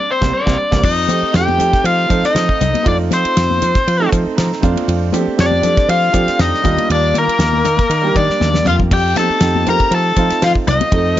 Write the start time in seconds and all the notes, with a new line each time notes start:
Already playing: D5
0.11 C4 C5
0.22 C2 G3 A#3 C4, kick, snare
0.33 D4 D5
0.46 C2 G3 A#3 C4, kick, snare
0.71 C2 G3 A#3 C4, kick, snare
0.83 F2 D#4 D#5, kick, crash
1.07 F3 A3 C4 D#4 G4, hi-hat pedal, ride, high conga
1.23 muted slap bass stroke
1.33 F2 A3 C4 D#4 G4 G5, snare, ride
1.48 high conga
1.57 F3 A3 C4 D#4 G4, hi-hat pedal, ride, low conga
1.73 muted slap bass stroke, kick, snare, ride
1.84 F3 F4 F5, ride
2.08 F3 A3 C4 D#4 A4, kick, hi-hat pedal, ride
2.23 D#4 D#5, muted slap bass stroke, snare, ride
2.35 F3, snare, ride
2.49 kick
2.61 C2, hi-hat pedal, ride, low conga
2.74 ride, high conga
2.83 F2 A3 C4 D4 D#4 F4, kick, ride
2.88 D5
3.11 F3 C4 C5, snare, hi-hat pedal, ride, high conga
3.25 muted slap bass stroke, ride
3.37 F2, snare, ride
3.50 high conga
3.62 F3, hi-hat pedal, ride, low conga
3.75 muted slap bass stroke, kick, snare, ride
3.88 F3, ride
3.99 A3 C4 D#4 A4
4.12 F3, kick, hi-hat pedal, ride
4.27 muted slap bass stroke
4.37 F3 A#5, snare, ride
4.52 snare
4.61 F2 A3 C4 D4 F4, kick, hi-hat pedal, ride, low conga
4.76 ride, high conga
4.88 F2, ride
5.12 F3 A3 C4 D4 G4, hi-hat pedal, ride, high conga
5.27 muted slap bass stroke
5.37 F2 A3 C4 D4 G4 D5, snare, ride
5.41 D4
5.51 high conga
5.61 F3 A3 C4 D4 G4, hi-hat pedal, ride, low conga
5.77 muted slap bass stroke, kick, snare, ride
5.89 F3 F4 F5, ride
6.12 F3 A3 C4 D4 G4, kick, hi-hat pedal, ride
6.28 muted slap bass stroke, snare, ride
6.39 F2 D#4 D#5, snare, ride
6.54 snare
6.61 D#2 G3 A#3 D4 F4, kick, hi-hat pedal, ride, low conga
6.78 ride, high conga
6.90 D#2 D4 D5, ride
7.14 D#3 A#3, hi-hat pedal, ride, high conga
7.18 A#4
7.28 muted slap bass stroke, ride
7.39 D#2, snare, ride
7.53 high conga
7.64 D#3, hi-hat pedal, ride, low conga
7.77 kick, snare, ride, high conga
7.90 D#3, ride
8.02 G3 A#3 D4 G4
8.14 D#3 D4 D5, kick, hi-hat pedal, ride, low conga
8.29 muted slap bass stroke, snare
8.40 D#2, snare, high conga
8.53 snare, high conga
8.65 F2 F4 F5, hi-hat pedal, mid tom, low conga
8.79 kick, low conga
8.91 F2 G4 G5, kick, crash, ride
9.14 F3 A3 C4 D#4 G4 A5, snare, hi-hat pedal, ride, high conga
9.19 A4
9.30 muted slap bass stroke
9.40 F2 A3 C4 D#4 G4, snare, ride
9.55 high conga
9.65 F3 A3 C4 D#4 G4, hi-hat pedal, ride, low conga
9.69 A#4 A#5
9.79 muted slap bass stroke, kick, ride
9.91 F3 A5, ride
9.95 A4
10.16 F3 A3 C4 D#4 F4, kick, hi-hat pedal, ride
10.30 muted slap bass stroke, snare, ride
10.42 F3 F4 F5, snare, ride
10.55 kick
10.67 C2 D#4 D#5, hi-hat pedal, ride, low conga
10.81 ride, high conga
10.92 F2 A3 C4 D#4 A4, kick, ride
11.17 F3